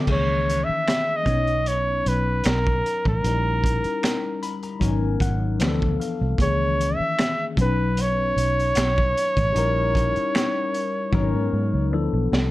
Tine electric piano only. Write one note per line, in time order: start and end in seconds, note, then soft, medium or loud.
0.06 0.08 D#3 soft
0.06 1.26 D#3 medium
0.06 1.26 A#3 medium
0.06 1.25 C#4 medium
0.06 1.27 G#4 medium
0.12 1.28 E3 medium
1.23 3.18 F#3 medium
1.23 3.19 B3 medium
1.23 3.20 C#4 medium
1.28 3.20 D#4 medium
1.28 3.21 C#5 medium
3.21 3.29 F#3 soft
3.21 4.78 C#4 medium
3.21 4.78 D#4 medium
3.26 4.80 G3 medium
3.26 4.79 E4 medium
3.26 4.80 A#4 medium
4.43 4.62 B5 medium
4.63 4.80 A#5 medium
4.80 5.59 F#3 medium
4.80 5.58 B3 medium
4.80 5.60 C#4 medium
4.80 5.61 D#4 medium
4.80 5.61 A#4 medium
4.80 5.18 G#5 medium
5.21 5.58 F#5 medium
5.59 6.37 E3 medium
5.59 6.39 F3 medium
5.59 6.39 B3 medium
5.59 6.39 D4 medium
5.59 5.68 G4 medium
5.59 5.97 F5 medium
5.69 6.43 A4 medium
6.00 6.37 F5 medium
6.38 7.58 D#3 medium
6.38 7.57 E3 medium
6.38 7.58 A#3 medium
6.38 7.57 C#4 medium
6.38 7.59 G#4 medium
7.56 9.50 F#3 medium
7.56 9.51 B3 medium
7.56 9.52 C#4 medium
7.60 9.52 D#4 medium
7.60 9.53 B4 medium
9.52 11.08 G3 medium
9.52 11.09 C#4 medium
9.52 11.10 D#4 medium
9.57 11.11 E4 medium
9.57 11.11 A#4 medium
11.12 11.91 F#3 medium
11.12 11.90 B3 medium
11.12 11.92 C#4 medium
11.12 11.93 D#4 medium
11.12 11.93 A#4 medium
11.91 12.51 F3 medium
11.91 12.51 B3 medium
11.91 12.51 D4 medium
11.91 12.51 E4 medium
11.91 12.51 A4 medium